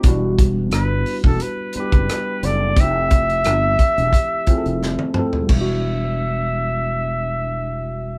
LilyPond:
<<
  \new Staff \with { instrumentName = "Flugelhorn" } { \time 4/4 \key e \minor \tempo 4 = 88 r4 b'8. a'16 b'8 b'4 d''8 | e''2.~ e''8 r8 | e''1 | }
  \new Staff \with { instrumentName = "Tine electric piano" } { \time 4/4 \key e \minor <fis g b d' e' fis'>4. r4 <g b d' e' g'>8. r16 <g b d' e' a'>8 | <f a c' e' g'>4. r4 <f a c' e' gis' a'>8. r16 <f a c' e' a'>8 | <g b d' e' fis'>1 | }
  \new Staff \with { instrumentName = "Fretless electric bass" } { \clef bass \time 4/4 \key e \minor e,,4 g,,8 r16 e,,16 r8. fis,,16 r8 fis,,8 | f,,4 g,,8 r16 e,,16 r8. f,,8 r8. | e,,1 | }
  \new DrumStaff \with { instrumentName = "Drums" } \drummode { \time 4/4 <hh bd>8 <hh bd>8 <hh ss>8 hho16 bd16 hh8 hh16 <hh bd>16 <hh ss>8 hh8 | <hh bd>8 <hh bd>16 hh16 <hh ss>8 <hh bd>16 hh16 <hh bd>8 <hh bd>16 hh16 sn16 tommh16 toml16 tomfh16 | <cymc bd>4 r4 r4 r4 | }
>>